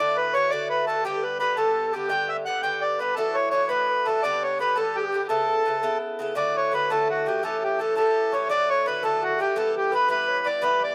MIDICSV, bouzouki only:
0, 0, Header, 1, 2, 480
1, 0, Start_track
1, 0, Tempo, 355240
1, 1398, Time_signature, 6, 3, 24, 8
1, 14794, End_track
2, 0, Start_track
2, 0, Title_t, "Bouzouki"
2, 0, Program_c, 0, 25
2, 0, Note_on_c, 0, 45, 76
2, 0, Note_on_c, 0, 50, 85
2, 1, Note_on_c, 0, 57, 82
2, 7, Note_on_c, 0, 66, 73
2, 443, Note_off_c, 0, 45, 0
2, 459, Note_on_c, 0, 45, 54
2, 464, Note_off_c, 0, 50, 0
2, 467, Note_off_c, 0, 57, 0
2, 469, Note_on_c, 0, 50, 66
2, 475, Note_off_c, 0, 66, 0
2, 483, Note_on_c, 0, 57, 56
2, 494, Note_on_c, 0, 66, 70
2, 683, Note_off_c, 0, 45, 0
2, 688, Note_off_c, 0, 50, 0
2, 692, Note_off_c, 0, 57, 0
2, 698, Note_on_c, 0, 45, 61
2, 700, Note_off_c, 0, 66, 0
2, 707, Note_on_c, 0, 50, 70
2, 708, Note_on_c, 0, 57, 74
2, 717, Note_on_c, 0, 66, 79
2, 1161, Note_off_c, 0, 45, 0
2, 1177, Note_on_c, 0, 45, 52
2, 1185, Note_off_c, 0, 57, 0
2, 1186, Note_off_c, 0, 50, 0
2, 1189, Note_off_c, 0, 66, 0
2, 1191, Note_on_c, 0, 50, 56
2, 1205, Note_on_c, 0, 57, 62
2, 1211, Note_on_c, 0, 66, 69
2, 1402, Note_off_c, 0, 45, 0
2, 1402, Note_off_c, 0, 50, 0
2, 1415, Note_off_c, 0, 57, 0
2, 1415, Note_on_c, 0, 43, 73
2, 1418, Note_on_c, 0, 50, 66
2, 1419, Note_off_c, 0, 66, 0
2, 1430, Note_on_c, 0, 59, 79
2, 1439, Note_on_c, 0, 67, 92
2, 1872, Note_off_c, 0, 43, 0
2, 1889, Note_on_c, 0, 43, 60
2, 1892, Note_off_c, 0, 50, 0
2, 1894, Note_off_c, 0, 59, 0
2, 1898, Note_on_c, 0, 50, 68
2, 1910, Note_off_c, 0, 67, 0
2, 1910, Note_on_c, 0, 59, 58
2, 1924, Note_on_c, 0, 67, 66
2, 2104, Note_off_c, 0, 43, 0
2, 2112, Note_off_c, 0, 50, 0
2, 2118, Note_off_c, 0, 59, 0
2, 2120, Note_on_c, 0, 43, 73
2, 2123, Note_off_c, 0, 67, 0
2, 2128, Note_on_c, 0, 50, 69
2, 2134, Note_on_c, 0, 59, 69
2, 2139, Note_on_c, 0, 67, 70
2, 2596, Note_off_c, 0, 43, 0
2, 2612, Note_on_c, 0, 43, 55
2, 2614, Note_off_c, 0, 59, 0
2, 2617, Note_off_c, 0, 50, 0
2, 2620, Note_off_c, 0, 67, 0
2, 2622, Note_on_c, 0, 50, 59
2, 2630, Note_on_c, 0, 59, 62
2, 2651, Note_on_c, 0, 67, 59
2, 2811, Note_off_c, 0, 43, 0
2, 2820, Note_off_c, 0, 50, 0
2, 2827, Note_on_c, 0, 43, 72
2, 2835, Note_off_c, 0, 59, 0
2, 2836, Note_on_c, 0, 50, 80
2, 2842, Note_off_c, 0, 67, 0
2, 2852, Note_on_c, 0, 59, 68
2, 2858, Note_on_c, 0, 67, 79
2, 3307, Note_off_c, 0, 43, 0
2, 3323, Note_on_c, 0, 43, 50
2, 3329, Note_off_c, 0, 50, 0
2, 3332, Note_off_c, 0, 59, 0
2, 3334, Note_on_c, 0, 50, 57
2, 3339, Note_off_c, 0, 67, 0
2, 3348, Note_on_c, 0, 59, 64
2, 3361, Note_on_c, 0, 67, 58
2, 3541, Note_off_c, 0, 43, 0
2, 3544, Note_off_c, 0, 50, 0
2, 3554, Note_off_c, 0, 59, 0
2, 3557, Note_on_c, 0, 43, 69
2, 3561, Note_off_c, 0, 67, 0
2, 3561, Note_on_c, 0, 50, 75
2, 3570, Note_on_c, 0, 59, 65
2, 3577, Note_on_c, 0, 67, 74
2, 4028, Note_off_c, 0, 43, 0
2, 4044, Note_on_c, 0, 43, 56
2, 4054, Note_off_c, 0, 50, 0
2, 4054, Note_off_c, 0, 59, 0
2, 4058, Note_off_c, 0, 67, 0
2, 4059, Note_on_c, 0, 50, 68
2, 4075, Note_on_c, 0, 59, 57
2, 4075, Note_on_c, 0, 67, 63
2, 4274, Note_off_c, 0, 43, 0
2, 4281, Note_off_c, 0, 50, 0
2, 4281, Note_on_c, 0, 45, 69
2, 4288, Note_on_c, 0, 52, 81
2, 4289, Note_off_c, 0, 59, 0
2, 4289, Note_off_c, 0, 67, 0
2, 4294, Note_on_c, 0, 62, 83
2, 4300, Note_on_c, 0, 66, 94
2, 4734, Note_off_c, 0, 45, 0
2, 4747, Note_off_c, 0, 52, 0
2, 4750, Note_on_c, 0, 45, 60
2, 4758, Note_off_c, 0, 62, 0
2, 4763, Note_on_c, 0, 52, 71
2, 4774, Note_on_c, 0, 62, 70
2, 4776, Note_off_c, 0, 66, 0
2, 4792, Note_on_c, 0, 66, 64
2, 4968, Note_off_c, 0, 45, 0
2, 4981, Note_off_c, 0, 52, 0
2, 4984, Note_on_c, 0, 45, 75
2, 4989, Note_off_c, 0, 62, 0
2, 4997, Note_on_c, 0, 52, 67
2, 4998, Note_off_c, 0, 66, 0
2, 5005, Note_on_c, 0, 62, 73
2, 5015, Note_on_c, 0, 66, 66
2, 5462, Note_off_c, 0, 45, 0
2, 5475, Note_off_c, 0, 52, 0
2, 5478, Note_on_c, 0, 45, 66
2, 5491, Note_off_c, 0, 62, 0
2, 5492, Note_on_c, 0, 52, 66
2, 5496, Note_off_c, 0, 66, 0
2, 5511, Note_on_c, 0, 62, 54
2, 5521, Note_on_c, 0, 66, 61
2, 5710, Note_off_c, 0, 45, 0
2, 5717, Note_off_c, 0, 52, 0
2, 5727, Note_off_c, 0, 62, 0
2, 5728, Note_on_c, 0, 43, 90
2, 5732, Note_off_c, 0, 66, 0
2, 5740, Note_on_c, 0, 50, 85
2, 5743, Note_on_c, 0, 59, 88
2, 5750, Note_on_c, 0, 67, 86
2, 6190, Note_off_c, 0, 43, 0
2, 6203, Note_off_c, 0, 50, 0
2, 6206, Note_on_c, 0, 43, 59
2, 6220, Note_off_c, 0, 59, 0
2, 6220, Note_on_c, 0, 50, 68
2, 6224, Note_off_c, 0, 67, 0
2, 6236, Note_on_c, 0, 59, 73
2, 6241, Note_on_c, 0, 67, 69
2, 6410, Note_off_c, 0, 43, 0
2, 6424, Note_off_c, 0, 50, 0
2, 6427, Note_on_c, 0, 43, 65
2, 6432, Note_off_c, 0, 59, 0
2, 6433, Note_off_c, 0, 67, 0
2, 6440, Note_on_c, 0, 50, 65
2, 6448, Note_on_c, 0, 59, 78
2, 6449, Note_on_c, 0, 67, 74
2, 6907, Note_off_c, 0, 43, 0
2, 6923, Note_on_c, 0, 43, 53
2, 6929, Note_off_c, 0, 50, 0
2, 6933, Note_off_c, 0, 59, 0
2, 6933, Note_off_c, 0, 67, 0
2, 6945, Note_on_c, 0, 50, 62
2, 6948, Note_on_c, 0, 59, 61
2, 6961, Note_on_c, 0, 67, 63
2, 7143, Note_off_c, 0, 43, 0
2, 7145, Note_off_c, 0, 59, 0
2, 7149, Note_on_c, 0, 49, 84
2, 7156, Note_off_c, 0, 50, 0
2, 7160, Note_on_c, 0, 64, 76
2, 7161, Note_on_c, 0, 59, 78
2, 7166, Note_off_c, 0, 67, 0
2, 7171, Note_on_c, 0, 69, 78
2, 7624, Note_off_c, 0, 49, 0
2, 7632, Note_off_c, 0, 59, 0
2, 7640, Note_on_c, 0, 49, 57
2, 7648, Note_off_c, 0, 64, 0
2, 7648, Note_on_c, 0, 59, 59
2, 7668, Note_off_c, 0, 69, 0
2, 7668, Note_on_c, 0, 64, 56
2, 7674, Note_on_c, 0, 69, 66
2, 7859, Note_off_c, 0, 49, 0
2, 7860, Note_off_c, 0, 59, 0
2, 7870, Note_off_c, 0, 64, 0
2, 7875, Note_on_c, 0, 49, 61
2, 7876, Note_off_c, 0, 69, 0
2, 7876, Note_on_c, 0, 59, 77
2, 7887, Note_on_c, 0, 64, 82
2, 7892, Note_on_c, 0, 69, 83
2, 8346, Note_off_c, 0, 49, 0
2, 8359, Note_off_c, 0, 59, 0
2, 8362, Note_on_c, 0, 49, 69
2, 8372, Note_off_c, 0, 64, 0
2, 8375, Note_on_c, 0, 59, 68
2, 8385, Note_on_c, 0, 64, 59
2, 8394, Note_off_c, 0, 69, 0
2, 8399, Note_on_c, 0, 69, 81
2, 8577, Note_off_c, 0, 49, 0
2, 8582, Note_on_c, 0, 45, 82
2, 8584, Note_off_c, 0, 59, 0
2, 8589, Note_on_c, 0, 50, 81
2, 8595, Note_off_c, 0, 64, 0
2, 8595, Note_off_c, 0, 69, 0
2, 8600, Note_on_c, 0, 57, 83
2, 8600, Note_on_c, 0, 66, 94
2, 9059, Note_off_c, 0, 45, 0
2, 9075, Note_on_c, 0, 45, 57
2, 9077, Note_off_c, 0, 50, 0
2, 9088, Note_off_c, 0, 66, 0
2, 9093, Note_on_c, 0, 50, 66
2, 9103, Note_off_c, 0, 57, 0
2, 9108, Note_on_c, 0, 57, 65
2, 9119, Note_on_c, 0, 66, 65
2, 9308, Note_off_c, 0, 45, 0
2, 9317, Note_off_c, 0, 50, 0
2, 9324, Note_on_c, 0, 45, 78
2, 9325, Note_off_c, 0, 57, 0
2, 9330, Note_off_c, 0, 66, 0
2, 9331, Note_on_c, 0, 50, 69
2, 9339, Note_on_c, 0, 57, 81
2, 9346, Note_on_c, 0, 66, 86
2, 9794, Note_off_c, 0, 45, 0
2, 9805, Note_off_c, 0, 50, 0
2, 9810, Note_on_c, 0, 45, 64
2, 9821, Note_off_c, 0, 66, 0
2, 9821, Note_on_c, 0, 50, 64
2, 9835, Note_off_c, 0, 57, 0
2, 9841, Note_on_c, 0, 57, 65
2, 9841, Note_on_c, 0, 66, 68
2, 10021, Note_off_c, 0, 45, 0
2, 10038, Note_on_c, 0, 45, 68
2, 10040, Note_off_c, 0, 50, 0
2, 10045, Note_on_c, 0, 52, 83
2, 10048, Note_off_c, 0, 57, 0
2, 10051, Note_off_c, 0, 66, 0
2, 10054, Note_on_c, 0, 61, 78
2, 10062, Note_on_c, 0, 67, 86
2, 10510, Note_off_c, 0, 45, 0
2, 10520, Note_off_c, 0, 52, 0
2, 10527, Note_on_c, 0, 45, 55
2, 10535, Note_off_c, 0, 61, 0
2, 10536, Note_on_c, 0, 52, 57
2, 10539, Note_off_c, 0, 67, 0
2, 10551, Note_on_c, 0, 61, 67
2, 10555, Note_on_c, 0, 67, 70
2, 10732, Note_off_c, 0, 45, 0
2, 10744, Note_off_c, 0, 52, 0
2, 10749, Note_on_c, 0, 45, 69
2, 10755, Note_off_c, 0, 61, 0
2, 10761, Note_on_c, 0, 52, 66
2, 10768, Note_off_c, 0, 67, 0
2, 10771, Note_on_c, 0, 61, 74
2, 10783, Note_on_c, 0, 67, 87
2, 11227, Note_off_c, 0, 45, 0
2, 11243, Note_on_c, 0, 45, 54
2, 11245, Note_off_c, 0, 52, 0
2, 11249, Note_off_c, 0, 61, 0
2, 11260, Note_off_c, 0, 67, 0
2, 11261, Note_on_c, 0, 52, 62
2, 11265, Note_on_c, 0, 61, 62
2, 11276, Note_on_c, 0, 67, 63
2, 11462, Note_off_c, 0, 45, 0
2, 11478, Note_on_c, 0, 45, 76
2, 11481, Note_off_c, 0, 52, 0
2, 11483, Note_off_c, 0, 61, 0
2, 11489, Note_off_c, 0, 67, 0
2, 11491, Note_on_c, 0, 50, 67
2, 11498, Note_on_c, 0, 57, 87
2, 11506, Note_on_c, 0, 66, 78
2, 11955, Note_off_c, 0, 45, 0
2, 11971, Note_on_c, 0, 45, 66
2, 11974, Note_off_c, 0, 50, 0
2, 11978, Note_off_c, 0, 57, 0
2, 11982, Note_off_c, 0, 66, 0
2, 11991, Note_on_c, 0, 50, 62
2, 12001, Note_on_c, 0, 57, 56
2, 12005, Note_on_c, 0, 66, 65
2, 12182, Note_off_c, 0, 45, 0
2, 12194, Note_off_c, 0, 50, 0
2, 12198, Note_on_c, 0, 45, 65
2, 12202, Note_off_c, 0, 57, 0
2, 12210, Note_on_c, 0, 50, 72
2, 12213, Note_off_c, 0, 66, 0
2, 12218, Note_on_c, 0, 57, 68
2, 12228, Note_on_c, 0, 66, 67
2, 12665, Note_off_c, 0, 45, 0
2, 12682, Note_on_c, 0, 45, 50
2, 12684, Note_off_c, 0, 50, 0
2, 12698, Note_off_c, 0, 57, 0
2, 12700, Note_on_c, 0, 50, 65
2, 12703, Note_off_c, 0, 66, 0
2, 12714, Note_on_c, 0, 57, 63
2, 12723, Note_on_c, 0, 66, 63
2, 12910, Note_off_c, 0, 45, 0
2, 12912, Note_off_c, 0, 50, 0
2, 12916, Note_on_c, 0, 43, 64
2, 12918, Note_on_c, 0, 52, 81
2, 12927, Note_off_c, 0, 57, 0
2, 12930, Note_off_c, 0, 66, 0
2, 12933, Note_on_c, 0, 59, 83
2, 12936, Note_on_c, 0, 67, 90
2, 13387, Note_off_c, 0, 43, 0
2, 13404, Note_on_c, 0, 43, 60
2, 13416, Note_off_c, 0, 52, 0
2, 13416, Note_off_c, 0, 59, 0
2, 13417, Note_off_c, 0, 67, 0
2, 13421, Note_on_c, 0, 52, 63
2, 13433, Note_on_c, 0, 59, 58
2, 13442, Note_on_c, 0, 67, 57
2, 13609, Note_off_c, 0, 43, 0
2, 13624, Note_off_c, 0, 52, 0
2, 13625, Note_on_c, 0, 43, 67
2, 13632, Note_off_c, 0, 59, 0
2, 13638, Note_off_c, 0, 67, 0
2, 13640, Note_on_c, 0, 52, 77
2, 13648, Note_on_c, 0, 59, 60
2, 13654, Note_on_c, 0, 67, 74
2, 14097, Note_off_c, 0, 43, 0
2, 14113, Note_on_c, 0, 43, 58
2, 14121, Note_off_c, 0, 52, 0
2, 14123, Note_off_c, 0, 59, 0
2, 14127, Note_on_c, 0, 52, 53
2, 14131, Note_off_c, 0, 67, 0
2, 14139, Note_on_c, 0, 59, 63
2, 14147, Note_on_c, 0, 67, 63
2, 14329, Note_off_c, 0, 43, 0
2, 14336, Note_off_c, 0, 52, 0
2, 14345, Note_on_c, 0, 43, 82
2, 14348, Note_off_c, 0, 59, 0
2, 14352, Note_on_c, 0, 52, 76
2, 14353, Note_off_c, 0, 67, 0
2, 14364, Note_on_c, 0, 59, 82
2, 14370, Note_on_c, 0, 67, 82
2, 14794, Note_off_c, 0, 43, 0
2, 14794, Note_off_c, 0, 52, 0
2, 14794, Note_off_c, 0, 59, 0
2, 14794, Note_off_c, 0, 67, 0
2, 14794, End_track
0, 0, End_of_file